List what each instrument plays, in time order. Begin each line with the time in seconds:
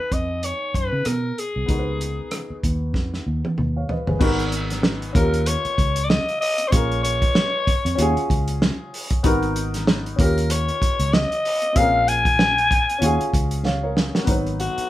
Already playing: grand piano B3 D#4 F#4 G#4, alto saxophone B4
0.12 fingered electric bass F2, alto saxophone D#5, kick, closed hi-hat
0.43 alto saxophone C#5, closed hi-hat
0.74 fingered electric bass F#2, alto saxophone B4, kick, closed hi-hat
0.93 fingered electric bass C#3
1.05 fingered electric bass B2, alto saxophone A#4, cross-stick, closed hi-hat
1.38 alto saxophone G#4, closed hi-hat
1.56 fingered electric bass C2
1.66 fingered electric bass C#2, grand piano B3 D#4, kick, closed hi-hat
1.70 grand piano F#4 A#4
1.79 grand piano B4
2.01 closed hi-hat
2.31 cross-stick, closed hi-hat
2.50 muted fingered electric bass stroke
2.63 fingered electric bass D#2, kick, closed hi-hat
2.94 fingered electric bass F2, kick, snare
3.14 snare
3.27 fingered electric bass D#2
3.45 high tom
3.58 fingered electric bass D#2, mid tom
3.76 grand piano C#5 F5
3.89 grand piano B4 D#5, floor tom
4.07 fingered electric bass G1, grand piano G#4 B4, floor tom
4.19 fingered electric bass G#1, grand piano B3 D#4 F#4 A#4, kick, crash
4.39 closed hi-hat
4.52 closed hi-hat
4.70 snare, closed hi-hat
4.83 snare
5.02 closed hi-hat
5.13 fingered electric bass D#2, grand piano C#4 F4, alto saxophone A#4, kick, closed hi-hat
5.17 grand piano G4 A#4
5.34 closed hi-hat
5.46 alto saxophone C#5, closed hi-hat
5.65 muted fingered electric bass stroke, closed hi-hat
5.78 fingered electric bass C#2, kick, closed hi-hat
5.96 closed hi-hat
6.04 alto saxophone D5
6.09 alto saxophone D#5, snare
6.28 closed hi-hat
6.41 alto saxophone D#5, open hi-hat
6.58 closed hi-hat
6.68 grand piano C#4 F4, alto saxophone C5 C#5
6.72 fingered electric bass A#1, grand piano G#4 A#4, kick, closed hi-hat
6.91 closed hi-hat
7.03 alto saxophone C#5, closed hi-hat
7.22 kick, closed hi-hat
7.35 snare
7.67 muted fingered electric bass stroke, kick, closed hi-hat
7.85 fingered electric bass F2, closed hi-hat
7.95 fingered electric bass D#2, grand piano C#4 F4, closed hi-hat
8.00 grand piano F#4 G#4
8.16 muted fingered electric bass stroke, closed hi-hat
8.30 fingered electric bass C#2, kick, closed hi-hat
8.48 closed hi-hat
8.62 snare
8.94 open hi-hat
9.10 kick, closed hi-hat
9.23 fingered electric bass G#1, grand piano B3 D#4 F#4 A#4, kick, closed hi-hat
9.43 closed hi-hat
9.56 closed hi-hat
9.74 snare, closed hi-hat
9.87 snare
10.06 closed hi-hat
10.16 fingered electric bass D#2, grand piano C#4 F4, kick, closed hi-hat
10.20 grand piano G4 A#4, alto saxophone A#4
10.38 closed hi-hat
10.50 alto saxophone C#5, closed hi-hat
10.68 closed hi-hat
10.82 kick, closed hi-hat
10.99 fingered electric bass C#2, closed hi-hat
11.13 alto saxophone D#5, snare
11.32 closed hi-hat
11.45 open hi-hat
11.62 closed hi-hat
11.72 fingered electric bass A#1, grand piano C4 F4, kick, closed hi-hat
11.77 grand piano C#4 G#4 A#4, alto saxophone F5
12.08 alto saxophone G#5, closed hi-hat
12.25 kick, closed hi-hat
12.39 snare
12.58 closed hi-hat
12.71 kick, closed hi-hat
12.89 closed hi-hat
12.98 fingered electric bass D#2, grand piano C#4 F4, closed hi-hat
13.03 grand piano F#4 G#4
13.20 muted fingered electric bass stroke, closed hi-hat
13.33 fingered electric bass C#2, kick, closed hi-hat
13.51 closed hi-hat
13.65 grand piano C#5 F5, snare
13.83 grand piano A#4 C#5
13.97 snare
14.15 grand piano F#4 A#4, snare
14.24 fingered electric bass G#1, grand piano B3 D#4, kick, closed hi-hat
14.29 grand piano F#3 B4
14.46 closed hi-hat
14.60 alto saxophone F#4, closed hi-hat
14.78 muted fingered electric bass stroke, closed hi-hat